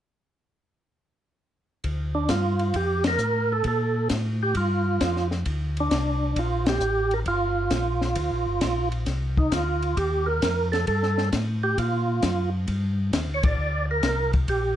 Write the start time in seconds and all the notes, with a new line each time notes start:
1.84 D2, kick, ride
2.15 D4
2.29 G2 F4, kick, snare, hi-hat pedal, ride
2.59 ride
2.74 F2 G4, kick, ride
3.04 A#4, snare, ride
3.18 A2, hi-hat pedal
3.52 A4
3.64 A#2 A4, kick, ride
4.09 A2, kick, snare, hi-hat pedal, ride
4.43 G4
4.55 G2 F4, kick, ride
5.01 F2, kick, snare, hi-hat pedal, ride
5.16 snare
5.31 snare
5.46 D2, kick, ride
5.77 D4, ride
5.91 C2, kick, snare, hi-hat pedal, ride
6.36 A#1 F4, kick, ride
6.66 G4, snare, ride
6.80 A1, hi-hat pedal
7.11 A#4, ride
7.26 G1 F4, kick, ride
7.70 A#1, kick, snare, hi-hat pedal, ride
8.01 snare
8.15 D2, kick, ride
8.31 A#1
8.46 G1
8.61 A#1, kick, snare, hi-hat pedal, ride
8.92 ride
9.06 C2, kick, snare, ride
9.37 D#4, kick
9.52 D2 F4, kick, snare, hi-hat pedal, ride
9.82 ride
9.97 D#2 G4, kick, ride
10.26 A#4
10.42 F2, kick, snare, hi-hat pedal, ride
10.72 A4, snare, ride
10.87 G2 A4, kick, ride
11.03 snare
11.18 snare
11.32 A2, kick, snare, hi-hat pedal, ride
11.63 G4
11.78 A#2 F4, kick, ride
12.22 F#2, kick, snare, hi-hat pedal, ride
12.68 G2, kick, ride
13.13 D#2, kick, snare, hi-hat pedal, ride
13.27 D2
13.34 C#5
13.43 A#1 D5, kick, ride
13.58 D2
13.91 A#4
14.03 C2, kick, snare, hi-hat pedal, ride
14.33 kick, ride
14.48 A#1 G4, kick, ride